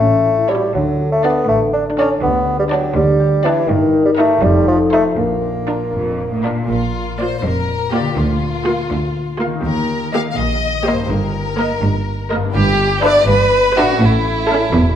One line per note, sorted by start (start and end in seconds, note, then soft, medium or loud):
0.00 0.59 A1 soft
0.00 0.59 A2 soft
0.00 0.76 A2 soft
0.00 0.51 A3 medium
0.00 0.34 C#4 soft
0.25 0.76 E4 soft
0.38 0.50 E4 soft
0.49 0.74 G3 medium
0.49 0.68 E4 soft
0.49 0.62 F#4 soft
0.49 0.68 A4 soft
0.49 1.22 A4 soft
0.49 0.68 C#5 soft
0.49 0.77 C#5 soft
0.74 1.34 D2 soft
0.74 2.21 D3 soft
0.74 1.33 D3 medium
0.74 1.11 F#3 medium
0.74 3.65 D4 soft
0.74 2.19 A4 soft
1.00 1.96 D4 soft
1.12 1.24 A3 medium
1.24 1.48 B3 medium
1.24 1.43 D4 soft
1.24 1.72 A4 soft
1.24 1.43 A4 soft
1.24 1.42 D5 soft
1.48 2.07 A1 soft
1.48 2.07 A2 soft
1.48 1.60 A3 medium
1.48 2.94 D5 soft
1.73 1.84 D4 medium
1.73 2.24 A4 soft
1.98 2.09 C#4 medium
1.98 2.45 D4 soft
1.98 2.16 D4 soft
1.98 2.17 A4 soft
1.98 2.16 D5 soft
2.22 2.80 D2 medium
2.22 3.70 D3 soft
2.22 2.80 D3 medium
2.22 2.58 B3 medium
2.22 3.66 G4 soft
2.46 3.42 D4 soft
2.59 2.64 G3 medium
2.70 2.95 F#3 medium
2.70 2.89 D4 soft
2.70 3.18 G4 soft
2.70 2.90 G4 soft
2.70 2.89 D5 medium
2.95 3.53 D2 medium
2.95 3.53 D3 medium
2.95 3.46 G3 medium
2.95 3.70 D5 soft
3.20 4.16 G4 soft
3.43 3.70 E3 medium
3.43 3.70 D4 soft
3.43 3.62 D4 medium
3.43 3.62 G4 medium
3.43 3.62 D5 medium
3.66 4.27 G1 medium
3.66 4.27 G2 medium
3.66 4.44 G2 medium
3.66 4.05 D#3 medium
3.66 4.37 D#4 medium
3.66 4.37 A#4 medium
3.93 4.66 D#4 soft
4.05 4.11 G3 medium
4.17 4.44 A3 medium
4.17 4.35 D#4 medium
4.17 4.44 G4 soft
4.17 4.36 G4 soft
4.17 4.35 A#4 medium
4.17 4.44 A#4 soft
4.42 5.01 F1 medium
4.42 5.01 F2 medium
4.42 5.19 F2 medium
4.42 4.67 G3 medium
4.42 5.15 D#4 medium
4.42 5.17 A4 medium
4.67 4.79 F3 medium
4.67 5.19 D#4 soft
4.91 5.04 A3 medium
4.91 5.10 D#4 medium
4.91 5.10 A4 soft
4.91 5.19 A4 soft
4.91 5.10 C5 soft
4.91 5.19 C5 soft
5.17 5.77 A#1 soft
5.17 6.50 A#2 soft
5.17 5.77 A#2 soft
5.17 6.42 A#3 medium
5.17 6.44 D4 soft
5.17 6.42 A#4 soft
5.42 6.54 D4 soft
5.67 5.86 D4 soft
5.67 6.42 F4 soft
5.67 5.87 F4 soft
5.67 5.86 A#4 soft
5.92 6.54 F1 soft
5.92 6.28 F2 soft
5.92 6.63 A#4 soft
6.18 9.66 D5 soft
6.32 6.44 A2 soft
6.43 6.68 A#2 soft
6.43 6.63 D4 soft
6.43 6.62 F4 soft
6.43 6.58 F4 soft
6.43 6.63 A#4 soft
6.51 8.10 A#2 soft
6.55 9.59 D4 soft
6.60 8.07 F4 soft
6.64 8.12 A#4 soft
6.69 7.29 A#1 medium
6.69 7.28 A#2 medium
6.69 7.16 F4 medium
7.19 7.37 A#3 soft
7.19 7.37 F4 soft
7.19 7.37 C5 medium
7.19 7.37 D5 soft
7.38 7.44 C5 soft
7.43 8.02 F1 medium
7.43 8.02 F2 medium
7.43 7.93 A#4 medium
7.92 8.11 A#3 soft
7.92 8.11 F4 soft
7.92 8.18 G4 medium
7.92 8.11 D5 soft
8.00 9.57 D3 soft
8.04 9.49 A#3 soft
8.09 9.62 F4 soft
8.13 8.75 D2 medium
8.13 12.03 A#4 soft
8.17 8.76 D2 medium
8.17 9.40 F4 soft
8.66 8.84 A#3 soft
8.66 8.84 F4 soft
8.66 8.85 F5 medium
8.90 9.49 D2 medium
8.90 9.49 D2 soft
9.40 9.58 A#3 medium
9.40 9.58 F4 soft
9.40 9.58 F5 medium
9.46 11.03 D#3 soft
9.50 10.95 A#3 soft
9.55 10.99 D#4 soft
9.60 11.04 G4 soft
9.64 10.22 D#2 medium
9.64 10.10 A#4 medium
10.13 10.30 A#3 medium
10.13 10.31 G4 medium
10.13 10.31 D#5 soft
10.13 10.21 F5 medium
10.31 10.37 F5 soft
10.37 10.95 A#1 medium
10.37 10.95 A#2 medium
10.37 10.86 D#5 medium
10.86 11.03 A#3 medium
10.86 11.03 G4 medium
10.86 11.03 C5 medium
10.86 11.04 D#5 medium
10.91 12.35 G2 soft
10.96 12.50 A#3 soft
11.00 12.52 D#4 soft
11.00 11.10 C5 soft
11.05 14.00 G4 soft
11.10 11.68 G1 medium
11.10 11.67 G2 medium
11.10 12.31 A#4 medium
11.58 11.76 A#3 medium
11.58 11.76 A#4 medium
11.58 11.76 D#5 medium
11.82 12.40 G1 medium
11.82 12.40 G2 medium
12.31 12.49 A#3 medium
12.31 12.49 A#4 medium
12.31 12.48 D#5 medium
12.36 13.93 G2 medium
12.40 13.95 B3 soft
12.45 13.97 D4 soft
12.49 14.96 E4 soft
12.54 13.13 G1 medium
12.54 13.13 G2 medium
12.54 13.00 G4 medium
13.03 13.21 D4 medium
13.03 13.21 B4 medium
13.03 13.28 D5 medium
13.03 13.21 E5 medium
13.27 13.86 G1 medium
13.27 13.85 G2 medium
13.27 13.75 B4 medium
13.75 13.94 D4 medium
13.75 14.01 F#4 medium
13.75 13.94 B4 medium
13.75 13.94 E5 medium
13.82 14.96 A2 medium
13.86 14.96 A3 soft
13.91 14.96 C#4 medium
13.95 14.96 A4 soft
14.00 14.59 A1 medium
14.00 14.58 A2 medium
14.00 14.96 E4 medium
14.49 14.68 C#4 medium
14.49 14.67 A4 medium
14.49 14.67 E5 medium
14.73 14.96 E1 medium
14.73 14.96 E2 medium